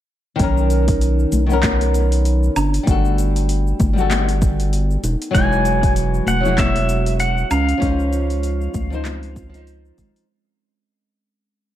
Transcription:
0.36 1.26 B1 medium
0.36 1.44 D#3 medium
0.36 kick loud
0.36 open hi-hat medium
0.40 0.69 A#3 medium
0.40 1.46 C#4 medium
0.40 1.48 A#4 medium
0.40 shaker soft
0.57 shaker soft
0.70 open hi-hat soft
0.70 shaker medium
0.88 kick loud
0.88 open hi-hat soft
0.88 shaker soft
1.01 open hi-hat soft
1.01 shaker soft
1.19 shaker soft
1.32 2.50 B1 medium
1.32 open hi-hat soft
1.32 high conga medium
1.32 shaker medium
1.46 2.53 D#3 medium
1.46 2.54 B3 medium
1.46 low conga medium
1.46 shaker soft
1.51 2.55 C#4 medium
1.51 2.56 A#4 medium
1.63 1.92 B3 medium
1.63 kick medium
1.63 clap medium
1.63 open hi-hat medium
1.63 high conga medium
1.63 shaker soft
1.81 open hi-hat soft
1.81 shaker soft
1.94 open hi-hat soft
1.94 shaker medium
2.12 open hi-hat soft
2.12 shaker soft
2.25 open hi-hat soft
2.25 shaker soft
2.43 shaker soft
2.56 2.79 G1 medium
2.56 2.86 D4 medium
2.56 open hi-hat soft
2.56 low woodblock medium
2.56 shaker medium
2.74 open hi-hat soft
2.74 shaker soft
2.83 3.73 G1 medium
2.83 3.91 G3 medium
2.83 2.88 B3 medium
2.83 kick loud
2.87 3.17 A3 medium
2.87 3.94 F#4 medium
2.87 3.95 A4 medium
2.87 open hi-hat medium
2.87 shaker soft
3.05 shaker soft
3.18 open hi-hat soft
3.18 shaker medium
3.36 open hi-hat soft
3.36 shaker soft
3.49 open hi-hat soft
3.49 shaker soft
3.67 shaker soft
3.80 4.97 G1 medium
3.80 kick loud
3.80 open hi-hat soft
3.80 high conga medium
3.80 shaker medium
3.93 5.00 G3 medium
3.93 3.98 B3 medium
3.93 low conga medium
3.98 5.02 F#4 medium
3.98 5.03 A4 medium
3.98 shaker soft
4.10 4.39 B3 medium
4.10 clap medium
4.10 open hi-hat medium
4.10 high conga medium
4.10 shaker soft
4.29 open hi-hat soft
4.29 shaker soft
4.42 kick loud
4.42 open hi-hat soft
4.42 shaker medium
4.60 open hi-hat soft
4.60 shaker soft
4.73 open hi-hat medium
4.73 shaker soft
4.91 shaker soft
5.04 5.16 E1 medium
5.04 5.33 D#4 medium
5.04 open hi-hat soft
5.04 shaker medium
5.22 open hi-hat soft
5.22 shaker soft
5.31 6.21 E1 medium
5.31 6.39 F#3 medium
5.31 5.64 G#3 medium
5.31 6.40 D#4 medium
5.31 5.92 G#5 loud
5.31 kick loud
5.31 open hi-hat medium
5.35 6.41 E3 medium
5.35 6.43 G#4 medium
5.35 shaker soft
5.52 shaker soft
5.65 open hi-hat soft
5.65 shaker medium
5.83 kick loud
5.83 open hi-hat soft
5.83 shaker soft
5.96 open hi-hat soft
5.96 shaker soft
6.14 shaker soft
6.26 7.44 E1 medium
6.26 6.56 F#5 loud
6.26 open hi-hat soft
6.26 high conga medium
6.26 shaker medium
6.40 7.47 F#3 medium
6.40 7.48 F#4 medium
6.45 7.50 E4 medium
6.45 7.51 G#4 medium
6.45 low conga medium
6.45 shaker soft
6.58 6.86 B3 medium
6.58 7.20 E5 loud
6.58 kick loud
6.58 clap medium
6.58 open hi-hat medium
6.58 high conga medium
6.58 shaker soft
6.76 open hi-hat soft
6.76 shaker soft
6.89 open hi-hat soft
6.89 shaker medium
7.06 open hi-hat soft
7.06 shaker soft
7.20 7.49 F#5 loud
7.20 open hi-hat soft
7.20 shaker soft
7.38 shaker soft
7.51 7.74 C#2 medium
7.51 7.80 C#4 medium
7.51 9.63 F5 medium
7.51 open hi-hat soft
7.51 low woodblock medium
7.51 shaker medium
7.69 open hi-hat soft
7.69 shaker soft
7.78 8.86 F3 medium
7.78 8.87 C#4 medium
7.82 8.68 C#2 loud
7.82 8.11 G#3 medium
7.82 8.88 D#4 medium
7.82 8.90 C5 medium
7.82 kick loud
7.82 open hi-hat medium
7.82 shaker soft
8.00 shaker soft
8.13 open hi-hat soft
8.13 shaker medium
8.30 open hi-hat soft
8.30 shaker soft
8.43 open hi-hat soft
8.43 shaker soft
8.61 shaker soft
8.74 9.92 C#2 medium
8.74 kick loud
8.74 open hi-hat soft
8.74 high conga medium
8.74 shaker medium
8.90 9.48 F3 medium
8.90 9.51 D#4 medium
8.90 9.52 C5 medium
8.90 low conga medium
8.90 shaker soft
9.05 9.34 C4 medium
9.05 clap medium
9.05 open hi-hat medium
9.05 high conga medium
9.05 shaker soft
9.23 open hi-hat soft
9.23 shaker soft
9.36 kick loud
9.36 open hi-hat soft
9.36 shaker medium
9.49 10.24 F3 loud
9.54 10.26 D#4 medium
9.54 10.28 C5 loud
9.54 open hi-hat soft
9.54 shaker soft
9.67 open hi-hat soft
9.67 shaker soft
9.85 shaker soft
9.98 10.10 G#1 medium
9.98 10.26 G#3 medium
9.98 kick medium
9.98 open hi-hat soft
9.98 shaker medium
10.16 open hi-hat soft
10.16 shaker soft

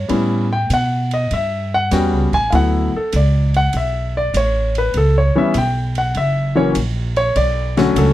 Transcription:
0.09 0.69 A2 medium
0.09 0.47 G3 medium
0.09 0.47 B3 medium
0.09 0.47 C#4 medium
0.09 0.47 E4 medium
0.09 ride medium
0.53 0.71 G5 medium
0.70 1.29 B2 medium
0.70 1.12 F#5 medium
0.70 hi-hat pedal medium
0.70 ride medium
1.11 1.31 D#5 medium
1.11 ride soft
1.31 1.90 G2 medium
1.31 1.73 E5 medium
1.31 ride medium
1.74 1.92 F#5 loud
1.91 2.12 E2 medium
1.91 2.29 G3 medium
1.91 2.29 B3 medium
1.91 2.29 C#4 medium
1.91 2.29 F#4 medium
1.91 2.33 G5 medium
1.91 snare soft
1.91 hi-hat pedal medium
1.91 ride medium
2.12 2.32 C#2 medium
2.33 2.51 A1 medium
2.33 2.52 G#5 loud
2.33 kick medium
2.33 ride soft
2.50 2.91 D2 medium
2.50 2.90 F#3 medium
2.50 2.90 A3 medium
2.50 2.90 B3 medium
2.50 2.90 E4 medium
2.50 2.55 F5 medium
2.50 ride medium
2.55 2.94 F#5 medium
2.94 3.14 A4 medium
2.94 muted upright bass stroke soft
3.12 3.72 C#2 medium
3.12 3.55 D5 medium
3.12 hi-hat pedal medium
3.12 ride medium
3.54 3.74 F#5 medium
3.54 ride soft
3.73 4.32 B1 medium
3.73 4.15 E5 medium
3.73 ride medium
4.17 4.35 D5 medium
4.34 4.92 A1 medium
4.34 4.76 C#5 medium
4.34 hi-hat pedal medium
4.34 ride medium
4.75 4.95 B4 medium
4.75 ride soft
4.94 5.33 C#2 medium
4.94 5.15 A4 medium
4.94 ride medium
5.18 5.36 C#5 medium
5.35 5.53 E3 medium
5.35 5.53 G3 medium
5.35 5.53 B3 medium
5.35 5.53 C#4 medium
5.35 5.56 E5 medium
5.54 6.13 B1 loud
5.54 5.97 G5 medium
5.54 hi-hat pedal medium
5.54 ride medium
5.95 6.16 F#5 medium
5.95 ride medium
6.15 6.74 F#1 medium
6.15 6.56 E5 medium
6.15 ride medium
6.55 6.73 E3 medium
6.55 6.73 F#3 medium
6.55 6.73 A#3 medium
6.55 6.73 C#4 medium
6.55 6.68 C#5 medium
6.75 7.34 A#1 medium
6.75 hi-hat pedal medium
6.75 ride medium
7.16 7.35 C#5 loud
7.16 ride soft
7.36 7.94 B1 medium
7.36 7.76 D5 loud
7.36 ride medium
7.77 8.13 D3 medium
7.77 8.13 F#3 medium
7.77 8.13 A3 medium
7.77 8.13 C#4 medium
7.77 7.96 F#4 medium
7.77 snare medium
7.77 ride soft
7.96 8.13 C#2 loud
7.96 8.13 A4 medium
7.96 hi-hat pedal medium
7.96 ride medium

